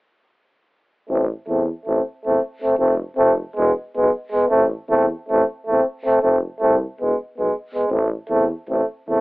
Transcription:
1.08 1.30 A1 loud
1.08 1.25 A3 soft
1.08 1.25 C4 medium
1.47 1.69 E2 medium
1.47 1.63 A3 medium
1.47 1.65 C4 medium
1.85 1.99 A1 medium
1.85 2.01 A3 medium
1.85 2.03 C4 medium
2.25 2.37 E2 medium
2.25 2.40 A3 medium
2.25 2.41 C4 medium
2.62 2.77 A3 medium
2.62 2.78 C4 medium
2.78 3.00 F1 medium
2.78 2.94 A3 medium
2.78 2.95 C4 medium
3.16 3.39 F1 medium
3.16 3.33 A3 medium
3.16 3.33 C4 medium
3.56 3.70 E1 medium
3.56 3.72 G#3 medium
3.56 3.73 B3 medium
3.96 4.08 B1 medium
3.96 4.11 G#3 medium
3.96 4.11 B3 medium
4.31 4.47 G#3 medium
4.31 4.49 B3 medium
4.49 4.73 A1 medium
4.49 4.65 A3 medium
4.49 4.66 C4 medium
4.89 5.11 E2 medium
4.89 5.06 A3 medium
4.89 5.06 C4 medium
5.29 5.42 A1 medium
5.29 5.44 A3 medium
5.29 5.45 C4 medium
5.67 5.79 E2 medium
5.67 5.82 A3 medium
5.71 5.85 C4 medium
6.04 6.21 A3 medium
6.04 6.20 C4 medium
6.21 6.44 F1 medium
6.21 6.37 A3 medium
6.21 6.39 C4 medium
6.60 6.83 C2 medium
6.60 6.76 A3 medium
6.60 6.77 C4 medium
7.00 7.13 E1 medium
7.00 7.17 G#3 soft
7.00 7.16 B3 medium
7.37 7.49 B1 medium
7.37 7.54 G#3 medium
7.37 7.52 B3 soft
7.74 7.90 G#3 medium
7.74 7.88 B3 soft
7.89 8.12 A1 loud
7.89 8.08 A3 soft
7.89 8.05 C4 medium
8.29 8.51 E2 medium
8.29 8.45 A3 medium
8.29 8.46 C4 medium
8.68 8.81 A1 medium
8.68 8.86 A3 soft
8.68 8.85 C4 medium
9.08 9.19 E2 medium
9.08 9.21 A3 medium
9.08 9.21 C4 medium

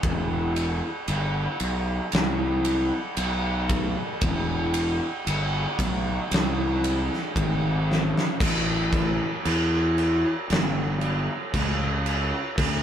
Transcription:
0.03 0.80 E1 medium
0.03 kick loud
0.03 ride medium
0.56 ride medium
1.08 1.46 G1 loud
1.08 ride medium
1.60 1.99 B1 medium
1.60 ride medium
2.12 2.90 C2 medium
2.12 snare loud
2.12 ride loud
2.65 ride medium
3.17 3.94 B1 medium
3.17 ride loud
3.69 kick medium
3.69 ride medium
4.21 4.99 E1 medium
4.21 kick loud
4.21 ride loud
4.74 ride medium
5.27 5.65 G1 loud
5.27 ride loud
5.79 6.17 B1 medium
5.79 kick medium
5.79 ride medium
6.31 7.08 C2 medium
6.31 snare loud
6.31 ride loud
6.84 ride medium
7.13 snare soft
7.36 8.13 G#1 medium
7.36 kick medium
7.36 ride loud
7.92 snare medium
8.17 snare medium
8.40 9.18 A1 medium
8.40 kick loud
8.40 crash loud
8.40 crash medium
8.93 kick medium
8.93 crash medium
9.45 10.23 E2 medium
9.45 crash medium
9.98 crash medium
10.50 11.27 G1 loud
10.50 snare loud
10.50 crash medium
11.01 crash medium
11.54 12.31 C#2 medium
11.54 kick medium
11.54 crash medium
12.06 crash medium
12.58 12.83 D2 medium
12.58 kick loud
12.58 crash loud

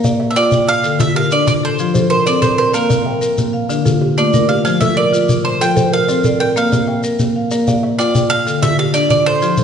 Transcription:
0.00 0.20 A#3 medium
0.00 0.36 A#4 medium
0.00 0.20 F5 medium
0.04 0.35 D5 medium
0.04 0.36 D5 medium
0.04 0.52 F5 medium
0.04 shekere medium
0.20 0.67 E5 medium
0.31 0.37 E5 medium
0.36 0.68 F4 medium
0.36 0.84 D5 medium
0.36 0.69 D5 loud
0.36 0.84 G5 medium
0.36 shekere medium
0.52 0.84 D5 medium
0.52 1.00 G5 medium
0.52 shekere medium
0.68 0.98 F5 loud
0.68 1.15 E6 medium
0.83 1.15 D3 medium
0.83 1.31 A4 medium
0.83 shekere medium
0.99 1.31 D3 medium
0.99 1.47 F4 medium
0.99 1.15 E5 loud
0.99 shekere medium
1.15 1.63 G4 medium
1.15 1.63 A#4 medium
1.15 1.32 F5 loud
1.31 1.63 D4 medium
1.31 1.46 D5 medium
1.31 shekere medium
1.47 1.79 D3 medium
1.47 1.52 D5 medium
1.47 shekere medium
1.63 1.95 A4 medium
1.63 2.09 C5 medium
1.79 2.11 F3 medium
1.79 2.27 F4 medium
1.79 shekere medium
1.94 2.26 F3 medium
1.94 2.26 A4 medium
1.94 2.42 C5 medium
1.94 shekere medium
2.10 2.57 A#4 medium
2.10 2.25 C5 medium
2.26 2.59 C4 medium
2.26 2.75 A4 medium
2.26 2.74 D5 medium
2.26 2.41 D5 medium
2.26 shekere medium
2.42 2.74 A4 medium
2.42 2.57 C5 medium
2.42 2.90 D5 medium
2.42 shekere medium
2.58 3.06 A#4 medium
2.58 2.74 C5 medium
2.73 3.06 A#3 medium
2.73 3.65 A#4 medium
2.73 3.22 F5 medium
2.73 shekere medium
2.90 3.22 A#3 medium
2.90 3.38 D5 medium
2.90 shekere medium
3.05 3.53 E5 medium
3.05 3.54 G5 medium
3.21 3.53 A#4 medium
3.21 shekere medium
3.38 3.70 A#3 medium
3.38 shekere medium
3.53 3.85 F5 medium
3.69 4.01 D3 medium
3.69 4.17 D4 medium
3.69 4.02 D5 medium
3.69 shekere medium
3.85 4.17 D3 medium
3.85 4.17 F4 medium
3.85 4.33 A4 medium
3.85 shekere medium
4.01 4.49 G4 medium
4.18 4.49 A3 medium
4.18 4.65 A#3 medium
4.18 4.65 F4 medium
4.18 4.47 D5 medium
4.18 shekere medium
4.33 4.65 F4 medium
4.33 4.81 A#4 medium
4.33 shekere medium
4.49 4.97 G4 medium
4.49 4.64 F5 medium
4.65 4.97 F3 medium
4.65 5.13 C5 medium
4.65 4.80 F5 medium
4.65 shekere medium
4.81 5.13 F3 medium
4.81 5.29 A4 medium
4.81 4.96 E5 medium
4.81 shekere medium
4.97 5.45 A#4 medium
4.97 5.41 D5 medium
4.97 5.45 D5 medium
5.13 5.44 F4 medium
5.13 shekere medium
5.29 5.61 F3 medium
5.29 shekere medium
5.45 5.92 C5 medium
5.45 5.61 C5 medium
5.61 5.92 F3 medium
5.61 6.08 F4 medium
5.61 5.75 A4 medium
5.61 5.90 G5 loud
5.61 shekere medium
5.76 6.08 A4 medium
5.76 6.24 C5 medium
5.76 shekere medium
5.93 6.39 A#4 medium
5.93 6.37 F5 loud
6.08 6.40 C4 medium
6.08 6.56 A4 medium
6.08 6.56 D5 medium
6.08 shekere medium
6.24 6.56 A4 medium
6.24 6.72 D5 medium
6.24 shekere medium
6.40 6.88 A#4 medium
6.40 6.56 G5 medium
6.56 6.88 A#3 medium
6.56 7.04 F5 medium
6.56 7.01 F5 medium
6.56 shekere medium
6.72 7.04 A#3 medium
6.72 7.20 D5 medium
6.72 shekere medium
6.87 7.35 E5 medium
6.87 7.35 G5 medium
7.04 7.35 A#4 medium
7.04 shekere medium
7.19 7.51 A#3 medium
7.19 shekere medium
7.36 7.83 F5 medium
7.51 7.83 A#3 medium
7.51 7.99 A#4 medium
7.51 7.67 D5 medium
7.51 shekere medium
7.67 7.98 D5 medium
7.67 7.99 D5 medium
7.67 8.15 F5 medium
7.67 shekere medium
7.83 8.31 E5 medium
7.99 8.31 F4 medium
7.99 8.28 D5 loud
7.99 8.46 D5 medium
7.99 8.47 G5 medium
7.99 shekere medium
8.15 8.47 D5 medium
8.15 8.62 G5 medium
8.15 shekere medium
8.30 8.62 F5 loud
8.30 8.78 E6 medium
8.47 8.78 D3 medium
8.47 8.94 A4 medium
8.47 shekere medium
8.62 8.94 D3 medium
8.62 9.10 F4 medium
8.62 8.79 E5 loud
8.62 shekere medium
8.79 9.26 G4 medium
8.79 8.95 F5 medium
8.94 9.26 D4 medium
8.94 9.09 D5 medium
8.94 shekere medium
9.10 9.42 D3 medium
9.10 9.25 D5 medium
9.10 shekere medium
9.26 9.57 A4 medium
9.26 9.64 C5 loud
9.42 9.64 F3 medium
9.42 9.64 F4 medium
9.42 shekere medium
9.57 9.64 F3 medium
9.57 9.64 A4 medium
9.57 9.64 C5 medium
9.57 shekere medium

